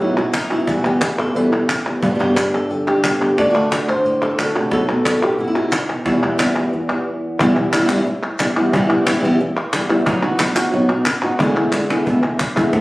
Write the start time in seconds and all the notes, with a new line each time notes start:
Already playing: B3
0.00 F#2 B2 F#3 B3 D#4 E4 F#4
0.17 B3 D#4 E4 F#4
0.34 D#4, muted nylon-string guitar stroke, cajon slap, clap
0.50 B3 D#4 E4 F#4, cajon slap
0.67 E2 B2 E3 G3 B3 E4 F#4, cajon bass, cajon slap
0.84 E3 G3 B3 E4 G4
1.01 muted nylon-string guitar stroke, cajon slap, clap
1.18 E3 G3 B3 E4 A4, clap
1.34 E2 B2 E3 G3 B3 E4 B4
1.52 E3 G3 B3 E4
1.69 muted nylon-string guitar stroke, cajon slap, clap
1.85 E3 G3 B3 E4, clap
2.02 G2 B2 D3 G3 B3 G4 B4, cajon bass
2.10 B2 D3 G3 B3 G4
2.15 B2 D3 G3 B3 G4
2.19 G2 B2 D3 G3 B3 G4, cajon slap
2.36 D3 G3 B3 D4 G4, cajon slap, clap
2.54 A4
2.70 D3 G4, muted nylon-string guitar stroke
2.87 G4
3.04 D3 G3 B3 F#4 G4, cajon slap, clap
3.20 D3 G3 B3 D4 G4, cajon slap
3.37 D3 A3 D4 F#4 D5, cajon bass, cajon slap
3.45 D3 A3 D4 F#4
3.49 D3 A3 D4 F#4
3.54 D3 A3 D4 F#4, cajon slap
3.71 A3 D4 F#4 D5, cajon slap, clap
3.88 C5
4.04 A2 A4, muted nylon-string guitar stroke
4.22 A4
4.38 D3 A3 D4 F#4, cajon slap, clap
4.54 C3 A3 D4 F#4
4.71 B2 F#3 B3 D#4 F#4 A4, cajon bass, cajon slap
4.88 B3 D#4 F#4
5.05 F#3 B3 D#4 F#4, cajon slap, clap
5.22 B3 D#4 F#4 G4, clap
5.38 B2 E4, muted nylon-string guitar stroke
5.44 E4 F#4
5.55 B3 D#4 E4 F#4
5.72 D#4, cajon slap, clap
5.89 B3, cajon slap
6.05 E2 B2 E3 G3 B3 E4, cajon bass, cajon slap
6.22 E3 G3 B3 E4, cajon slap
6.39 E3 G3 B3 E4, cajon slap, clap
6.56 E3 G3 B3 E4
6.73 E2, muted nylon-string guitar stroke
6.89 E3 G3 B3 E4
7.39 E2 B2 E3 G3 B3 E4, cajon bass
7.56 E3 G3 B3 E4, cajon slap
7.73 B2 E3 G3 B3 E4, cajon slap, clap
7.80 B2 E3 G3 B3 E4
7.84 B2 E3 G3 B3
7.89 E2 B2 E3 G3 B3 E4, clap
8.06 muted nylon-string guitar stroke, cajon slap
8.23 cajon slap, clap
8.39 E3 G3 B3 E4, cajon slap, clap
8.56 E3 G3 B3 E4
8.72 E2 B2 E3 G3 B3 E4, cajon bass
8.89 E3 G3 B3 E4, cajon slap
9.06 E3 G3 B3 E4, cajon slap, clap
9.15 B2 E3 G3 B3 E4
9.19 B2 E3 E4
9.24 E2 B2 E3 G3 B3
9.40 muted nylon-string guitar stroke, cajon slap
9.57 clap
9.73 E3 G3 B3 E4, cajon slap, clap
9.89 E3 G3 B3 E4
10.06 B2 F#3 B3 D#4 F#4, cajon bass
10.22 B3 D#4 F#4, cajon slap
10.39 F#3 B3 D#4 F#4, muted nylon-string guitar stroke, cajon slap, clap
10.55 B3 D#4 F#4, clap
10.72 B2 F#3 B3 D#4 F#4, muted nylon-string guitar stroke
10.89 B3 D#4 F#4, cajon slap, clap
11.05 muted nylon-string guitar stroke, cajon slap, clap
11.23 B3 D#4 F#4
11.38 E2 B2 D3 G#3 B3 E4, cajon bass
11.55 D3 G#3 B3 E4, cajon slap
11.72 D3 G#3 B3 E4, muted nylon-string guitar stroke, cajon slap, clap
11.89 D3 G#3 B3 E4, cajon slap
12.05 E2 B2 D3 G#3 B3 E4, muted nylon-string guitar stroke, cajon bass
12.23 D3 G#3 B3
12.39 muted nylon-string guitar stroke, cajon bass, clap
12.55 D3 G#3 B3 E4, cajon bass
12.72 A2 E3 A3 C4 E4 F#4, cajon bass, cajon slap